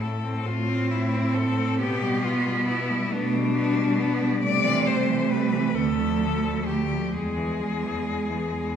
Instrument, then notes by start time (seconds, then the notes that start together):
cello
Already playing: A2
0.01 A3 A4
0.24 C4
0.45 A2 A3 C4 F4
0.69 C4
0.90 A3 E4
1.13 C4
1.34 A3 A4
1.57 C4
1.79 B2 B3 G4
2.02 G3
2.23 B3 F4
2.46 G3
2.67 B3 E4
2.89 G3
3.10 B2 A3 B3 D4
3.34 G3
3.55 G3 B3
3.76 G3
3.99 B3
4.21 G3
4.42 C3 G3 A3 D5
4.64 E3
4.86 G3 C5
5.08 E3
5.30 G3 B4
5.52 E3
5.75 D2 D3 A4
5.99 F3
6.21 D3
6.45 F3
6.66 D3 G4
6.90 F3
7.12 E2 G#3 G#4
7.36 E3
7.59 G#3
7.82 E3
8.06 G#3
8.29 E3
8.52 E2 G#3